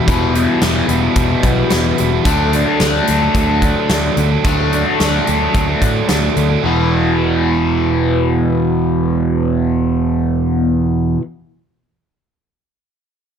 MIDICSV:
0, 0, Header, 1, 5, 480
1, 0, Start_track
1, 0, Key_signature, 1, "minor"
1, 0, Tempo, 548948
1, 64, Time_signature, 4, 2, 24, 8
1, 11707, End_track
2, 0, Start_track
2, 0, Title_t, "Overdriven electric guitar"
2, 0, Program_c, 0, 29
2, 54, Note_on_c, 0, 52, 81
2, 66, Note_on_c, 0, 55, 95
2, 75, Note_on_c, 0, 59, 88
2, 83, Note_on_c, 0, 64, 98
2, 280, Note_off_c, 0, 52, 0
2, 289, Note_off_c, 0, 55, 0
2, 291, Note_on_c, 0, 52, 77
2, 299, Note_on_c, 0, 55, 65
2, 303, Note_off_c, 0, 59, 0
2, 307, Note_off_c, 0, 64, 0
2, 313, Note_on_c, 0, 59, 70
2, 318, Note_on_c, 0, 64, 74
2, 404, Note_off_c, 0, 64, 0
2, 415, Note_on_c, 0, 64, 63
2, 423, Note_off_c, 0, 59, 0
2, 433, Note_on_c, 0, 59, 62
2, 435, Note_off_c, 0, 55, 0
2, 446, Note_on_c, 0, 55, 51
2, 526, Note_off_c, 0, 52, 0
2, 537, Note_off_c, 0, 55, 0
2, 537, Note_on_c, 0, 52, 89
2, 547, Note_on_c, 0, 55, 96
2, 548, Note_off_c, 0, 59, 0
2, 556, Note_off_c, 0, 64, 0
2, 559, Note_on_c, 0, 59, 110
2, 567, Note_on_c, 0, 64, 103
2, 759, Note_off_c, 0, 52, 0
2, 769, Note_on_c, 0, 52, 74
2, 771, Note_off_c, 0, 55, 0
2, 780, Note_off_c, 0, 59, 0
2, 782, Note_on_c, 0, 55, 70
2, 786, Note_off_c, 0, 64, 0
2, 791, Note_on_c, 0, 59, 80
2, 797, Note_on_c, 0, 64, 81
2, 881, Note_off_c, 0, 64, 0
2, 892, Note_on_c, 0, 64, 67
2, 897, Note_off_c, 0, 59, 0
2, 908, Note_on_c, 0, 59, 63
2, 911, Note_off_c, 0, 55, 0
2, 922, Note_on_c, 0, 55, 55
2, 1005, Note_off_c, 0, 52, 0
2, 1015, Note_off_c, 0, 55, 0
2, 1016, Note_on_c, 0, 52, 71
2, 1026, Note_on_c, 0, 55, 74
2, 1027, Note_off_c, 0, 59, 0
2, 1035, Note_off_c, 0, 64, 0
2, 1037, Note_on_c, 0, 59, 76
2, 1045, Note_on_c, 0, 64, 74
2, 1126, Note_off_c, 0, 64, 0
2, 1136, Note_on_c, 0, 64, 68
2, 1144, Note_off_c, 0, 59, 0
2, 1154, Note_on_c, 0, 59, 67
2, 1160, Note_off_c, 0, 55, 0
2, 1170, Note_on_c, 0, 55, 58
2, 1249, Note_off_c, 0, 52, 0
2, 1257, Note_off_c, 0, 55, 0
2, 1259, Note_on_c, 0, 52, 75
2, 1267, Note_on_c, 0, 55, 80
2, 1269, Note_off_c, 0, 59, 0
2, 1278, Note_off_c, 0, 64, 0
2, 1280, Note_on_c, 0, 59, 79
2, 1288, Note_on_c, 0, 64, 82
2, 1481, Note_off_c, 0, 52, 0
2, 1491, Note_on_c, 0, 52, 79
2, 1496, Note_off_c, 0, 55, 0
2, 1504, Note_off_c, 0, 59, 0
2, 1506, Note_on_c, 0, 55, 84
2, 1513, Note_off_c, 0, 64, 0
2, 1515, Note_on_c, 0, 59, 91
2, 1523, Note_on_c, 0, 64, 92
2, 1718, Note_off_c, 0, 52, 0
2, 1729, Note_on_c, 0, 52, 55
2, 1731, Note_off_c, 0, 55, 0
2, 1738, Note_off_c, 0, 59, 0
2, 1741, Note_on_c, 0, 55, 65
2, 1748, Note_off_c, 0, 64, 0
2, 1749, Note_on_c, 0, 59, 72
2, 1759, Note_on_c, 0, 64, 73
2, 1839, Note_off_c, 0, 64, 0
2, 1849, Note_on_c, 0, 64, 75
2, 1854, Note_off_c, 0, 59, 0
2, 1864, Note_on_c, 0, 59, 62
2, 1867, Note_off_c, 0, 55, 0
2, 1877, Note_on_c, 0, 55, 53
2, 1954, Note_off_c, 0, 52, 0
2, 1955, Note_off_c, 0, 64, 0
2, 1963, Note_off_c, 0, 59, 0
2, 1966, Note_on_c, 0, 50, 98
2, 1969, Note_off_c, 0, 55, 0
2, 1978, Note_on_c, 0, 54, 90
2, 1985, Note_on_c, 0, 57, 87
2, 1994, Note_on_c, 0, 62, 96
2, 2209, Note_off_c, 0, 50, 0
2, 2212, Note_on_c, 0, 50, 65
2, 2217, Note_off_c, 0, 54, 0
2, 2220, Note_on_c, 0, 54, 70
2, 2227, Note_off_c, 0, 57, 0
2, 2231, Note_on_c, 0, 57, 69
2, 2238, Note_off_c, 0, 62, 0
2, 2242, Note_on_c, 0, 62, 78
2, 2322, Note_off_c, 0, 62, 0
2, 2325, Note_on_c, 0, 62, 67
2, 2343, Note_off_c, 0, 57, 0
2, 2346, Note_on_c, 0, 57, 58
2, 2353, Note_off_c, 0, 54, 0
2, 2356, Note_on_c, 0, 54, 57
2, 2450, Note_off_c, 0, 50, 0
2, 2454, Note_on_c, 0, 50, 89
2, 2461, Note_off_c, 0, 54, 0
2, 2465, Note_on_c, 0, 54, 88
2, 2474, Note_off_c, 0, 57, 0
2, 2477, Note_on_c, 0, 57, 103
2, 2483, Note_off_c, 0, 62, 0
2, 2486, Note_on_c, 0, 62, 99
2, 2687, Note_off_c, 0, 50, 0
2, 2691, Note_on_c, 0, 50, 72
2, 2698, Note_off_c, 0, 54, 0
2, 2701, Note_on_c, 0, 54, 63
2, 2706, Note_off_c, 0, 57, 0
2, 2709, Note_on_c, 0, 57, 77
2, 2715, Note_off_c, 0, 62, 0
2, 2719, Note_on_c, 0, 62, 89
2, 2800, Note_off_c, 0, 62, 0
2, 2804, Note_on_c, 0, 62, 64
2, 2811, Note_off_c, 0, 57, 0
2, 2821, Note_on_c, 0, 57, 66
2, 2824, Note_off_c, 0, 54, 0
2, 2834, Note_on_c, 0, 54, 57
2, 2915, Note_off_c, 0, 50, 0
2, 2925, Note_on_c, 0, 50, 73
2, 2930, Note_off_c, 0, 54, 0
2, 2938, Note_off_c, 0, 57, 0
2, 2940, Note_on_c, 0, 54, 74
2, 2948, Note_on_c, 0, 57, 72
2, 2954, Note_off_c, 0, 62, 0
2, 2957, Note_on_c, 0, 62, 70
2, 3043, Note_off_c, 0, 62, 0
2, 3047, Note_on_c, 0, 62, 70
2, 3053, Note_off_c, 0, 57, 0
2, 3063, Note_on_c, 0, 57, 67
2, 3065, Note_off_c, 0, 54, 0
2, 3076, Note_on_c, 0, 54, 56
2, 3152, Note_off_c, 0, 50, 0
2, 3163, Note_off_c, 0, 54, 0
2, 3163, Note_on_c, 0, 50, 74
2, 3172, Note_off_c, 0, 57, 0
2, 3174, Note_on_c, 0, 54, 74
2, 3182, Note_on_c, 0, 57, 77
2, 3185, Note_off_c, 0, 62, 0
2, 3188, Note_on_c, 0, 62, 86
2, 3392, Note_off_c, 0, 50, 0
2, 3402, Note_on_c, 0, 50, 72
2, 3403, Note_off_c, 0, 54, 0
2, 3414, Note_on_c, 0, 54, 89
2, 3416, Note_off_c, 0, 57, 0
2, 3426, Note_on_c, 0, 57, 85
2, 3433, Note_off_c, 0, 62, 0
2, 3437, Note_on_c, 0, 62, 91
2, 3640, Note_off_c, 0, 50, 0
2, 3650, Note_off_c, 0, 54, 0
2, 3651, Note_on_c, 0, 50, 62
2, 3661, Note_off_c, 0, 57, 0
2, 3661, Note_on_c, 0, 54, 59
2, 3672, Note_on_c, 0, 57, 66
2, 3675, Note_off_c, 0, 62, 0
2, 3679, Note_on_c, 0, 62, 70
2, 3754, Note_off_c, 0, 62, 0
2, 3765, Note_on_c, 0, 62, 63
2, 3773, Note_off_c, 0, 57, 0
2, 3784, Note_on_c, 0, 57, 55
2, 3785, Note_off_c, 0, 54, 0
2, 3795, Note_on_c, 0, 54, 50
2, 3872, Note_off_c, 0, 50, 0
2, 3882, Note_on_c, 0, 50, 88
2, 3886, Note_off_c, 0, 54, 0
2, 3896, Note_off_c, 0, 57, 0
2, 3896, Note_on_c, 0, 54, 91
2, 3904, Note_off_c, 0, 62, 0
2, 3907, Note_on_c, 0, 57, 98
2, 3915, Note_on_c, 0, 62, 99
2, 4116, Note_off_c, 0, 50, 0
2, 4126, Note_off_c, 0, 54, 0
2, 4127, Note_on_c, 0, 50, 65
2, 4137, Note_off_c, 0, 57, 0
2, 4137, Note_on_c, 0, 54, 73
2, 4145, Note_off_c, 0, 62, 0
2, 4147, Note_on_c, 0, 57, 69
2, 4156, Note_on_c, 0, 62, 75
2, 4241, Note_off_c, 0, 62, 0
2, 4252, Note_on_c, 0, 62, 62
2, 4255, Note_off_c, 0, 57, 0
2, 4265, Note_on_c, 0, 57, 51
2, 4270, Note_off_c, 0, 54, 0
2, 4280, Note_on_c, 0, 54, 55
2, 4356, Note_off_c, 0, 50, 0
2, 4366, Note_on_c, 0, 50, 78
2, 4369, Note_off_c, 0, 54, 0
2, 4380, Note_off_c, 0, 57, 0
2, 4380, Note_on_c, 0, 54, 90
2, 4386, Note_off_c, 0, 62, 0
2, 4390, Note_on_c, 0, 57, 89
2, 4397, Note_on_c, 0, 62, 92
2, 4587, Note_off_c, 0, 50, 0
2, 4598, Note_on_c, 0, 50, 71
2, 4600, Note_off_c, 0, 54, 0
2, 4607, Note_off_c, 0, 57, 0
2, 4610, Note_on_c, 0, 54, 63
2, 4617, Note_on_c, 0, 57, 68
2, 4619, Note_off_c, 0, 62, 0
2, 4629, Note_on_c, 0, 62, 75
2, 4711, Note_off_c, 0, 62, 0
2, 4721, Note_on_c, 0, 62, 63
2, 4728, Note_off_c, 0, 57, 0
2, 4739, Note_on_c, 0, 57, 68
2, 4742, Note_off_c, 0, 54, 0
2, 4752, Note_on_c, 0, 54, 55
2, 4835, Note_off_c, 0, 50, 0
2, 4845, Note_on_c, 0, 50, 59
2, 4849, Note_off_c, 0, 54, 0
2, 4856, Note_off_c, 0, 57, 0
2, 4860, Note_on_c, 0, 54, 69
2, 4865, Note_off_c, 0, 62, 0
2, 4866, Note_on_c, 0, 57, 74
2, 4875, Note_on_c, 0, 62, 72
2, 4950, Note_off_c, 0, 62, 0
2, 4960, Note_on_c, 0, 62, 67
2, 4966, Note_off_c, 0, 57, 0
2, 4976, Note_on_c, 0, 57, 58
2, 4982, Note_off_c, 0, 54, 0
2, 4993, Note_on_c, 0, 54, 50
2, 5074, Note_off_c, 0, 50, 0
2, 5084, Note_on_c, 0, 50, 67
2, 5085, Note_off_c, 0, 54, 0
2, 5095, Note_off_c, 0, 57, 0
2, 5095, Note_on_c, 0, 54, 73
2, 5103, Note_off_c, 0, 62, 0
2, 5106, Note_on_c, 0, 57, 70
2, 5113, Note_on_c, 0, 62, 78
2, 5314, Note_off_c, 0, 50, 0
2, 5324, Note_off_c, 0, 54, 0
2, 5324, Note_on_c, 0, 50, 69
2, 5335, Note_on_c, 0, 54, 82
2, 5336, Note_off_c, 0, 57, 0
2, 5344, Note_off_c, 0, 62, 0
2, 5346, Note_on_c, 0, 57, 84
2, 5355, Note_on_c, 0, 62, 76
2, 5552, Note_off_c, 0, 50, 0
2, 5562, Note_on_c, 0, 50, 54
2, 5564, Note_off_c, 0, 54, 0
2, 5574, Note_on_c, 0, 54, 55
2, 5576, Note_off_c, 0, 57, 0
2, 5581, Note_off_c, 0, 62, 0
2, 5587, Note_on_c, 0, 57, 55
2, 5591, Note_on_c, 0, 62, 61
2, 5666, Note_off_c, 0, 62, 0
2, 5677, Note_on_c, 0, 62, 64
2, 5683, Note_off_c, 0, 57, 0
2, 5693, Note_off_c, 0, 54, 0
2, 5693, Note_on_c, 0, 57, 49
2, 5704, Note_on_c, 0, 54, 47
2, 5785, Note_off_c, 0, 62, 0
2, 5788, Note_off_c, 0, 50, 0
2, 5792, Note_on_c, 0, 40, 76
2, 5793, Note_off_c, 0, 57, 0
2, 5799, Note_off_c, 0, 54, 0
2, 5814, Note_on_c, 0, 47, 81
2, 5829, Note_on_c, 0, 52, 90
2, 9771, Note_off_c, 0, 40, 0
2, 9793, Note_off_c, 0, 47, 0
2, 9808, Note_off_c, 0, 52, 0
2, 11707, End_track
3, 0, Start_track
3, 0, Title_t, "Overdriven electric guitar"
3, 0, Program_c, 1, 29
3, 67, Note_on_c, 1, 40, 85
3, 77, Note_on_c, 1, 47, 85
3, 1957, Note_off_c, 1, 47, 0
3, 1958, Note_off_c, 1, 40, 0
3, 11707, End_track
4, 0, Start_track
4, 0, Title_t, "Fingered electric bass"
4, 0, Program_c, 2, 33
4, 65, Note_on_c, 2, 28, 86
4, 395, Note_off_c, 2, 28, 0
4, 540, Note_on_c, 2, 28, 77
4, 705, Note_off_c, 2, 28, 0
4, 770, Note_on_c, 2, 28, 78
4, 939, Note_off_c, 2, 28, 0
4, 1012, Note_on_c, 2, 28, 80
4, 1179, Note_off_c, 2, 28, 0
4, 1250, Note_on_c, 2, 35, 81
4, 1418, Note_off_c, 2, 35, 0
4, 1504, Note_on_c, 2, 28, 86
4, 1666, Note_off_c, 2, 28, 0
4, 1745, Note_on_c, 2, 28, 80
4, 1906, Note_off_c, 2, 28, 0
4, 1967, Note_on_c, 2, 38, 88
4, 2300, Note_off_c, 2, 38, 0
4, 2457, Note_on_c, 2, 38, 82
4, 2620, Note_off_c, 2, 38, 0
4, 2697, Note_on_c, 2, 38, 75
4, 2860, Note_off_c, 2, 38, 0
4, 2927, Note_on_c, 2, 38, 87
4, 3259, Note_off_c, 2, 38, 0
4, 3409, Note_on_c, 2, 38, 77
4, 3573, Note_off_c, 2, 38, 0
4, 3643, Note_on_c, 2, 38, 81
4, 3809, Note_off_c, 2, 38, 0
4, 3884, Note_on_c, 2, 38, 84
4, 4217, Note_off_c, 2, 38, 0
4, 4372, Note_on_c, 2, 38, 73
4, 4535, Note_off_c, 2, 38, 0
4, 4616, Note_on_c, 2, 38, 77
4, 4777, Note_off_c, 2, 38, 0
4, 4846, Note_on_c, 2, 38, 77
4, 5011, Note_off_c, 2, 38, 0
4, 5084, Note_on_c, 2, 45, 83
4, 5250, Note_off_c, 2, 45, 0
4, 5329, Note_on_c, 2, 38, 69
4, 5494, Note_off_c, 2, 38, 0
4, 5565, Note_on_c, 2, 38, 78
4, 5731, Note_off_c, 2, 38, 0
4, 5803, Note_on_c, 2, 28, 75
4, 9747, Note_off_c, 2, 28, 0
4, 11707, End_track
5, 0, Start_track
5, 0, Title_t, "Drums"
5, 68, Note_on_c, 9, 36, 96
5, 68, Note_on_c, 9, 42, 74
5, 156, Note_off_c, 9, 36, 0
5, 156, Note_off_c, 9, 42, 0
5, 308, Note_on_c, 9, 42, 49
5, 395, Note_off_c, 9, 42, 0
5, 540, Note_on_c, 9, 38, 89
5, 540, Note_on_c, 9, 42, 72
5, 627, Note_off_c, 9, 38, 0
5, 627, Note_off_c, 9, 42, 0
5, 775, Note_on_c, 9, 42, 58
5, 863, Note_off_c, 9, 42, 0
5, 1011, Note_on_c, 9, 42, 73
5, 1015, Note_on_c, 9, 36, 97
5, 1098, Note_off_c, 9, 42, 0
5, 1103, Note_off_c, 9, 36, 0
5, 1251, Note_on_c, 9, 42, 60
5, 1254, Note_on_c, 9, 36, 77
5, 1338, Note_off_c, 9, 42, 0
5, 1341, Note_off_c, 9, 36, 0
5, 1491, Note_on_c, 9, 38, 92
5, 1491, Note_on_c, 9, 42, 77
5, 1578, Note_off_c, 9, 38, 0
5, 1578, Note_off_c, 9, 42, 0
5, 1731, Note_on_c, 9, 42, 53
5, 1819, Note_off_c, 9, 42, 0
5, 1969, Note_on_c, 9, 42, 82
5, 1970, Note_on_c, 9, 36, 103
5, 2057, Note_off_c, 9, 42, 0
5, 2058, Note_off_c, 9, 36, 0
5, 2212, Note_on_c, 9, 42, 51
5, 2299, Note_off_c, 9, 42, 0
5, 2448, Note_on_c, 9, 38, 88
5, 2448, Note_on_c, 9, 42, 61
5, 2536, Note_off_c, 9, 38, 0
5, 2536, Note_off_c, 9, 42, 0
5, 2688, Note_on_c, 9, 42, 60
5, 2776, Note_off_c, 9, 42, 0
5, 2926, Note_on_c, 9, 42, 68
5, 2927, Note_on_c, 9, 36, 94
5, 3013, Note_off_c, 9, 42, 0
5, 3014, Note_off_c, 9, 36, 0
5, 3164, Note_on_c, 9, 42, 58
5, 3166, Note_on_c, 9, 36, 72
5, 3251, Note_off_c, 9, 42, 0
5, 3254, Note_off_c, 9, 36, 0
5, 3407, Note_on_c, 9, 38, 93
5, 3407, Note_on_c, 9, 42, 75
5, 3494, Note_off_c, 9, 38, 0
5, 3494, Note_off_c, 9, 42, 0
5, 3645, Note_on_c, 9, 42, 55
5, 3732, Note_off_c, 9, 42, 0
5, 3888, Note_on_c, 9, 36, 99
5, 3890, Note_on_c, 9, 42, 68
5, 3976, Note_off_c, 9, 36, 0
5, 3977, Note_off_c, 9, 42, 0
5, 4132, Note_on_c, 9, 42, 45
5, 4219, Note_off_c, 9, 42, 0
5, 4374, Note_on_c, 9, 38, 82
5, 4374, Note_on_c, 9, 42, 62
5, 4461, Note_off_c, 9, 38, 0
5, 4461, Note_off_c, 9, 42, 0
5, 4609, Note_on_c, 9, 42, 50
5, 4696, Note_off_c, 9, 42, 0
5, 4849, Note_on_c, 9, 36, 98
5, 4850, Note_on_c, 9, 42, 75
5, 4937, Note_off_c, 9, 36, 0
5, 4937, Note_off_c, 9, 42, 0
5, 5087, Note_on_c, 9, 36, 72
5, 5088, Note_on_c, 9, 42, 61
5, 5174, Note_off_c, 9, 36, 0
5, 5176, Note_off_c, 9, 42, 0
5, 5323, Note_on_c, 9, 38, 94
5, 5323, Note_on_c, 9, 42, 70
5, 5411, Note_off_c, 9, 38, 0
5, 5411, Note_off_c, 9, 42, 0
5, 5566, Note_on_c, 9, 42, 53
5, 5653, Note_off_c, 9, 42, 0
5, 11707, End_track
0, 0, End_of_file